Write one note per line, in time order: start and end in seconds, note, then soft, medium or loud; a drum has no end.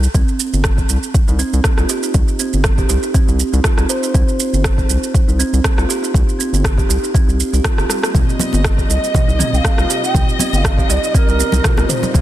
0.03 shaker soft
0.14 0.23 C2 medium
0.14 0.27 C4 medium
0.14 kick loud
0.14 shaker medium
0.28 shaker soft
0.40 shaker medium
0.53 0.83 G1 medium
0.53 shaker soft
0.64 kick loud
0.64 cross-stick loud
0.64 shaker medium
0.78 kick medium
0.78 shaker soft
0.89 0.98 C2 medium
0.89 shaker medium
1.03 shaker soft
1.14 kick loud
1.14 shaker soft
1.28 1.43 C2 medium
1.28 1.38 D#4 medium
1.28 shaker soft
1.39 1.52 C4 loud
1.39 shaker medium
1.53 1.60 C2 medium
1.53 shaker soft
1.64 1.77 A#3 medium
1.64 kick loud
1.64 cross-stick medium
1.64 shaker soft
1.78 1.85 C2 medium
1.78 1.84 F4 medium
1.78 cross-stick medium
1.78 shaker soft
1.89 2.02 G4 medium
1.89 shaker medium
2.03 2.09 D#4 medium
2.03 shaker soft
2.14 2.23 C2 loud
2.14 kick loud
2.14 shaker soft
2.28 shaker soft
2.39 2.52 C4 medium
2.39 shaker medium
2.53 2.83 G1 medium
2.53 shaker soft
2.64 kick loud
2.64 cross-stick loud
2.64 shaker soft
2.78 2.88 G4 medium
2.78 kick medium
2.78 shaker soft
2.89 2.98 C2 medium
2.89 3.02 G4 loud
2.89 shaker medium
3.03 3.09 D#4 medium
3.03 shaker soft
3.14 3.22 C4 loud
3.14 kick loud
3.14 shaker soft
3.28 3.43 C2 medium
3.28 shaker soft
3.40 shaker medium
3.53 3.60 C2 medium
3.53 3.63 D#4 medium
3.53 shaker soft
3.64 3.77 F4 loud
3.64 kick loud
3.64 cross-stick loud
3.64 shaker soft
3.78 3.85 C2 medium
3.78 3.84 C4 medium
3.78 cross-stick medium
3.78 shaker soft
3.89 4.02 C5 medium
3.89 shaker medium
4.03 4.09 D#4 medium
4.03 shaker soft
4.14 4.23 C2 medium
4.14 4.27 C4 medium
4.14 kick loud
4.14 shaker soft
4.29 shaker soft
4.40 shaker medium
4.53 4.83 G1 medium
4.53 shaker soft
4.64 kick loud
4.64 cross-stick loud
4.64 shaker soft
4.78 kick medium
4.78 shaker soft
4.90 4.98 C2 medium
4.90 shaker medium
5.03 shaker soft
5.14 kick loud
5.14 shaker soft
5.28 5.43 C2 medium
5.28 5.38 D#4 medium
5.28 shaker soft
5.39 5.52 C4 loud
5.39 shaker medium
5.53 5.60 C2 medium
5.53 shaker soft
5.64 kick loud
5.64 cross-stick loud
5.64 shaker soft
5.78 5.85 C2 medium
5.78 5.84 F4 loud
5.78 cross-stick medium
5.78 shaker soft
5.89 6.01 G4 loud
5.89 shaker medium
6.03 6.09 D#4 medium
6.03 shaker soft
6.14 6.23 C2 loud
6.14 kick loud
6.14 shaker soft
6.29 shaker soft
6.39 6.52 C4 medium
6.39 shaker medium
6.53 6.82 G1 medium
6.53 shaker soft
6.64 kick loud
6.64 cross-stick loud
6.64 shaker soft
6.78 6.88 G4 medium
6.78 kick medium
6.78 shaker soft
6.89 6.98 C2 medium
6.89 7.02 G4 loud
6.89 shaker medium
7.03 7.09 D#4 medium
7.03 shaker soft
7.14 7.22 C4 loud
7.14 kick loud
7.14 shaker soft
7.28 7.42 C2 medium
7.28 shaker soft
7.40 shaker medium
7.53 7.60 C2 medium
7.53 7.59 G4 medium
7.53 shaker soft
7.64 7.72 F4 loud
7.64 kick loud
7.64 cross-stick loud
7.64 shaker soft
7.78 7.85 G1 medium
7.78 7.88 G4 medium
7.78 cross-stick medium
7.78 shaker soft
7.89 7.97 G3 medium
7.89 cross-stick medium
7.89 shaker medium
8.03 8.14 A#3 medium
8.03 cross-stick medium
8.03 shaker soft
8.14 8.23 C2 loud
8.14 12.21 C3 medium
8.14 12.21 G3 medium
8.14 8.27 C4 medium
8.14 12.13 D#5 medium
8.14 kick loud
8.14 mid tom medium
8.14 shaker soft
8.29 shaker soft
8.39 high conga medium
8.39 low conga loud
8.39 shaker medium
8.53 8.83 G1 medium
8.53 high conga medium
8.53 shaker soft
8.64 kick loud
8.64 cross-stick loud
8.64 shaker soft
8.78 kick medium
8.78 shaker soft
8.89 8.98 C2 medium
8.89 9.51 D#5 medium
8.89 shaker medium
9.04 shaker soft
9.14 kick loud
9.14 mid tom medium
9.14 high conga medium
9.14 low conga medium
9.14 shaker medium
9.28 9.43 C2 medium
9.28 9.38 D#4 medium
9.28 shaker soft
9.39 9.52 C4 medium
9.39 mid tom medium
9.39 high conga medium
9.39 low conga medium
9.39 shaker medium
9.53 9.60 C2 medium
9.53 10.00 F5 medium
9.53 9.57 G5 medium
9.53 shaker soft
9.65 kick loud
9.65 cross-stick loud
9.65 shaker medium
9.78 9.85 C2 medium
9.78 9.84 F4 medium
9.78 cross-stick medium
9.78 shaker soft
9.89 10.02 G4 medium
9.89 shaker medium
10.03 10.09 D#4 medium
10.03 10.24 G5 medium
10.03 shaker soft
10.15 10.23 C2 loud
10.15 kick loud
10.15 mid tom medium
10.15 shaker medium
10.29 shaker soft
10.39 10.52 C4 medium
10.39 high conga medium
10.39 low conga medium
10.39 shaker medium
10.53 10.82 G1 medium
10.53 10.87 F5 medium
10.53 10.58 G5 medium
10.53 high conga medium
10.53 shaker soft
10.64 kick loud
10.64 cross-stick loud
10.64 shaker medium
10.78 10.88 G4 loud
10.78 kick medium
10.78 shaker soft
10.89 10.98 C2 medium
10.89 11.02 G4 loud
10.89 11.12 D#5 medium
10.89 shaker medium
11.03 11.09 D#4 medium
11.03 shaker soft
11.14 11.22 C4 loud
11.14 11.85 A#4 medium
11.14 kick loud
11.14 shaker medium
11.28 11.43 C2 medium
11.28 shaker soft
11.39 high conga medium
11.39 shaker medium
11.52 11.60 C2 medium
11.52 11.63 D#4 medium
11.52 low conga loud
11.52 shaker soft
11.64 11.77 F4 loud
11.64 kick loud
11.64 cross-stick loud
11.64 mid tom medium
11.64 shaker medium
11.77 11.85 C2 medium
11.77 11.84 C4 medium
11.77 cross-stick medium
11.77 high conga loud
11.77 shaker soft
11.89 12.02 C5 loud
11.89 mid tom medium
11.89 shaker medium
12.03 12.09 D#4 medium
12.03 low conga medium
12.03 shaker soft
12.14 12.21 C2 loud
12.14 12.21 C4 medium
12.14 12.21 F4 medium
12.14 kick loud
12.14 mid tom medium
12.14 shaker medium